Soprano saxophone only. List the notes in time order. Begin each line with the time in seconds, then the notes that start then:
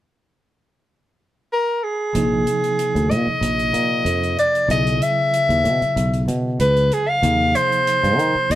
1.53 A#4
1.83 G#4
3.10 D#5
4.39 D5
4.71 D#5
5.02 E5
6.60 B4
6.93 G#4
7.09 F5
7.56 C5
8.51 D#5